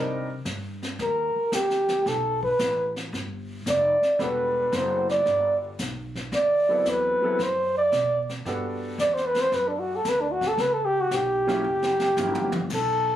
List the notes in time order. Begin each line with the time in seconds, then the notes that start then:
Already playing: C3 G3 C4 D4 D#4 A#4
0.45 G2, kick, snare, hi-hat pedal
0.83 snare
0.99 D#2 A#4, brush sweep, kick, snare
1.36 muted upright bass stroke
1.52 D2 G4, kick, snare, hi-hat pedal
1.70 snare
1.88 snare
2.06 B1 A4, brush sweep, kick, snare
2.43 B4, kick
2.59 A1, kick, snare, hi-hat pedal
2.96 snare
3.13 G1, brush sweep, kick, snare
3.66 F1 D5, kick, snare, hi-hat pedal
4.02 muted upright bass stroke, snare
4.19 E1 G3 B3 D4 F#4 A4 B4, brush sweep, kick, snare
4.72 F#1 C5, kick, snare, hi-hat pedal
5.09 D5, snare
5.26 G1, brush sweep, kick, snare
5.79 B1, kick, snare, hi-hat pedal
6.16 kick, snare
6.32 D2 D5, brush sweep, kick, snare
6.69 F#3 B3 C4 E4 A4
6.85 E2, kick, snare, hi-hat pedal
6.89 B4
7.22 F#3 B3 C4 E4 A4, muted upright bass stroke
7.39 F#2 C5, brush sweep, kick, snare
7.78 D5
7.92 B2, kick, snare, hi-hat pedal
8.29 snare
8.45 G2 B3 D4 F#4 G4 A4, brush sweep, kick, snare
8.98 E2 D5, kick, snare, hi-hat pedal
9.14 C5, snare
9.26 B4
9.34 snare
9.41 C5
9.52 F#2 B4, brush sweep, kick, snare
9.68 D4
9.79 F#4
9.96 A4
10.05 D2 B4, kick, snare, hi-hat pedal
10.21 D4
10.32 F#4
10.41 kick, snare
10.48 A4
10.57 C#2 B4, brush sweep, kick, snare
10.73 A4
10.85 G4
11.01 F#4
11.11 B1 G4, kick, snare, hi-hat pedal
11.47 F#3 A#3 C#4 E4 G4, snare
11.64 F#1
11.83 snare
12.00 snare
12.17 G1 F#3 A#3 C#4 E4 G4, floor tom, hi-hat pedal
12.35 floor tom
12.52 floor tom
12.70 B1, brush sweep, kick, snare, crash
12.74 A4